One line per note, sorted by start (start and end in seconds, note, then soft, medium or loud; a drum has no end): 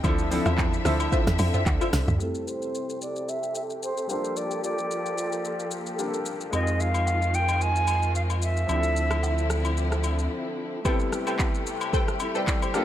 0.04 0.40 D2 loud
0.04 2.18 D3 medium
0.04 0.26 F3 medium
0.04 2.18 C4 medium
0.04 0.26 C4 medium
0.04 0.27 D4 medium
0.04 0.27 E4 medium
0.04 0.42 F4 loud
0.04 0.27 A4 loud
0.04 0.42 C5 medium
0.04 2.18 E5 medium
0.04 0.43 E5 loud
0.04 kick loud
0.04 high agogo medium
0.04 shaker medium
0.18 shaker medium
0.30 0.75 F3 medium
0.30 0.76 C4 medium
0.30 0.76 D4 medium
0.30 0.76 E4 medium
0.30 0.77 A4 loud
0.30 open hi-hat medium
0.30 shaker medium
0.46 0.79 E2 medium
0.46 0.82 F4 medium
0.46 0.82 C5 medium
0.46 0.82 E5 medium
0.46 cross-stick medium
0.46 high agogo medium
0.46 shaker medium
0.58 kick loud
0.58 clap medium
0.58 shaker medium
0.73 shaker medium
0.85 1.08 D2 loud
0.85 1.72 F3 medium
0.85 1.72 C4 medium
0.85 1.73 D4 medium
0.85 1.73 E4 medium
0.85 1.10 F4 medium
0.85 1.73 A4 loud
0.85 1.10 C5 medium
0.85 1.10 E5 medium
0.85 cross-stick loud
0.85 open hi-hat medium
0.85 shaker loud
1.00 high agogo medium
1.00 shaker medium
1.12 1.25 F4 loud
1.12 1.25 C5 medium
1.12 1.25 E5 loud
1.12 kick loud
1.12 shaker medium
1.27 1.38 E2 loud
1.27 cross-stick medium
1.27 snare medium
1.27 shaker medium
1.39 1.52 F2 loud
1.39 open hi-hat medium
1.39 high agogo medium
1.39 shaker loud
1.54 1.64 F4 medium
1.54 1.64 C5 medium
1.54 1.65 E5 medium
1.54 mid tom medium
1.54 shaker medium
1.66 1.79 D2 medium
1.66 kick loud
1.66 clap loud
1.66 low woodblock medium
1.66 shaker medium
1.81 1.91 F4 medium
1.81 1.91 C5 medium
1.81 1.92 E5 medium
1.81 high agogo medium
1.81 shaker medium
1.93 2.06 C2 medium
1.93 cross-stick loud
1.93 snare medium
1.93 open hi-hat medium
1.93 shaker loud
2.08 2.19 D2 medium
2.08 mid tom loud
2.08 shaker medium
2.18 4.08 C3 medium
2.18 4.05 G3 medium
2.18 4.05 A3 medium
2.18 4.08 C4 medium
2.18 4.06 C4 medium
2.18 6.49 G4 medium
2.18 6.49 A4 medium
2.18 2.50 A4 medium
2.18 shaker medium
2.23 4.07 E4 medium
2.23 2.29 G4 medium
2.30 4.11 A4 medium
2.35 shaker medium
2.48 3.02 C5 loud
2.48 shaker medium
2.62 shaker soft
2.75 shaker medium
2.90 shaker soft
3.02 3.31 D5 loud
3.02 shaker medium
3.16 shaker soft
3.29 3.56 E5 loud
3.29 shaker medium
3.43 shaker soft
3.55 3.62 E5 medium
3.55 shaker medium
3.70 shaker soft
3.83 4.08 C5 medium
3.83 shaker medium
3.97 shaker medium
4.08 6.50 F3 medium
4.08 5.94 G3 medium
4.08 5.95 A#3 medium
4.08 6.50 A#3 medium
4.08 5.95 D4 medium
4.08 4.39 C5 medium
4.08 shaker medium
4.12 5.96 F4 medium
4.12 5.97 A4 medium
4.24 shaker medium
4.37 4.64 D5 loud
4.37 shaker medium
4.51 shaker medium
4.64 5.68 D5 medium
4.64 shaker medium
4.78 shaker soft
4.91 shaker medium
5.06 shaker soft
5.18 shaker medium
5.32 shaker medium
5.45 shaker medium
5.60 shaker soft
5.71 shaker medium
5.86 shaker soft
5.98 6.53 G3 medium
5.98 6.53 A#3 medium
5.98 6.53 D4 medium
5.98 6.54 F4 medium
5.98 6.07 G4 medium
5.98 shaker medium
6.08 6.57 A4 medium
6.14 shaker medium
6.26 shaker medium
6.41 shaker medium
6.51 8.65 F2 medium
6.51 8.67 D#3 medium
6.51 8.67 F3 medium
6.51 8.64 G#3 medium
6.51 8.67 G#3 medium
6.51 8.65 C4 medium
6.51 8.65 D#4 medium
6.51 8.67 F4 medium
6.51 6.82 D#5 medium
6.51 high agogo medium
6.51 shaker medium
6.55 8.66 F4 medium
6.55 6.62 G4 medium
6.63 8.70 G#4 medium
6.67 shaker medium
6.80 7.36 F5 loud
6.80 shaker medium
6.94 high agogo medium
6.94 shaker soft
7.07 low woodblock medium
7.07 shaker medium
7.22 shaker soft
7.34 7.63 G5 loud
7.34 shaker medium
7.49 high agogo medium
7.49 shaker soft
7.61 8.15 G#5 loud
7.61 shaker medium
7.76 shaker soft
7.87 high agogo medium
7.87 shaker medium
8.03 shaker soft
8.15 8.22 F5 medium
8.15 shaker medium
8.30 high agogo medium
8.30 shaker medium
8.42 9.47 E5 medium
8.42 shaker medium
8.57 shaker soft
8.67 10.28 D2 medium
8.67 10.83 D3 medium
8.67 10.80 F3 medium
8.67 10.83 F3 medium
8.67 10.81 C4 medium
8.67 10.83 C4 medium
8.67 10.82 D4 medium
8.67 10.83 E4 medium
8.67 high agogo medium
8.67 shaker medium
8.71 10.82 E4 medium
8.71 8.78 G4 medium
8.79 10.86 A4 medium
8.83 shaker soft
8.96 shaker medium
9.11 cross-stick medium
9.11 high agogo medium
9.11 shaker soft
9.23 low woodblock medium
9.23 shaker medium
9.38 shaker soft
9.50 cross-stick medium
9.50 shaker medium
9.65 high agogo medium
9.65 shaker soft
9.77 shaker medium
9.92 cross-stick medium
9.92 shaker soft
10.04 high agogo medium
10.04 shaker medium
10.19 shaker soft
10.85 12.73 C3 medium
10.85 11.72 G3 medium
10.85 12.85 G3 medium
10.85 12.73 A3 medium
10.85 11.72 B3 medium
10.85 11.73 C4 medium
10.85 11.73 E4 medium
10.85 12.85 G4 medium
10.85 10.98 A4 loud
10.85 11.73 A4 loud
10.85 10.98 B4 medium
10.85 10.98 C5 medium
10.85 10.98 G5 loud
10.85 kick loud
10.85 high agogo medium
10.85 shaker medium
10.99 shaker medium
11.13 cross-stick medium
11.13 shaker medium
11.27 11.37 A4 medium
11.27 11.37 B4 medium
11.27 11.37 C5 medium
11.27 11.38 G5 medium
11.27 high agogo medium
11.27 shaker medium
11.39 kick loud
11.39 clap medium
11.39 low woodblock medium
11.39 shaker medium
11.54 shaker soft
11.67 shaker medium
11.81 high agogo medium
11.81 shaker medium
11.93 12.32 A4 medium
11.93 12.32 B4 medium
11.93 12.32 C5 medium
11.93 12.32 G5 loud
11.93 kick loud
11.93 shaker medium
12.08 cross-stick medium
12.08 shaker soft
12.20 12.35 E4 medium
12.20 12.35 A4 medium
12.20 high agogo medium
12.20 shaker medium
12.35 12.45 A4 medium
12.35 12.62 A4 medium
12.35 12.45 B4 medium
12.35 12.46 C5 medium
12.35 12.61 D5 medium
12.35 12.46 G5 medium
12.35 shaker soft
12.48 kick loud
12.48 clap loud
12.48 shaker medium
12.62 12.85 G4 medium
12.62 12.85 C5 medium
12.62 high agogo medium
12.62 shaker medium
12.74 12.85 A#2 medium
12.74 12.85 G3 medium
12.74 12.85 A#3 medium
12.74 12.85 D4 medium
12.74 12.85 F4 medium
12.74 12.85 A4 loud
12.74 cross-stick loud
12.74 shaker medium